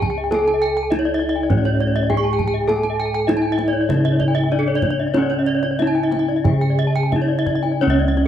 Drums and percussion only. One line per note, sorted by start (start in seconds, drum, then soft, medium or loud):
0.02 kendang low medium
0.32 kendang high medium
0.48 kendang slap soft
0.92 kendang slap soft
0.92 kendang high soft
1.22 kendang slap soft
1.50 kendang low medium
1.65 kendang slap soft
2.10 kendang high soft
2.10 kendang low soft
2.39 kendang low medium
2.69 kendang high medium
2.85 kendang slap soft
3.29 kendang slap soft
3.29 kendang high medium
3.59 kendang slap soft
3.59 kendang high soft
3.90 kendang low medium
4.05 kendang slap soft
4.20 kendang low soft
4.82 kendang high soft
4.82 kendang low medium
5.14 kendang high medium
5.31 kendang slap soft
5.64 kendang slap soft
5.79 kendang slap soft
5.79 kendang high soft
6.12 kendang slap soft
6.12 kendang high soft
6.29 kendang slap soft
6.45 kendang low medium
6.62 kendang slap soft
6.78 kendang slap soft
7.12 kendang slap soft
7.12 kendang high soft
7.12 kendang low soft
7.47 kendang slap soft
7.47 kendang low medium
7.64 kendang slap soft
8.17 kendang slap soft